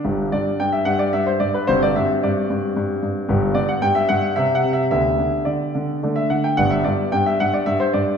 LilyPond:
<<
  \new Staff \with { instrumentName = "Grand piano" } { \time 3/4 \key g \major \tempo 4 = 110 << { r8 d''8 g''16 e''16 fis''16 d''16 e''16 c''16 d''16 b'16 | c''16 d''16 e''8 d''4. r8 | r8 d''16 fis''16 g''16 e''16 fis''8 \tuplet 3/2 { e''8 fis''8 e''8 } | e''4 d''4 r16 e''16 fis''16 g''16 |
fis''16 e''16 d''8 g''16 e''16 fis''16 d''16 e''16 c''16 d''8 | } \\ { <d' g'>2. | <c' fis'>2. | <b g'>2 <c' g'>4 | <b g'>2 <a d'>4 |
<b d'>2. | } >> }
  \new Staff \with { instrumentName = "Grand piano" } { \clef bass \time 3/4 \key g \major <g,, g,>8 g,8 g,8 g,8 g,8 g,8 | <g,, g,>8 g,8 g,8 g,8 g,8 g,8 | <g,, g,>8 g,8 g,8 g,8 c8 c8 | <d, d>8 d8 d8 d8 d8 d8 |
<g,, g,>8 g,8 g,8 g,8 g,8 g,8 | }
>>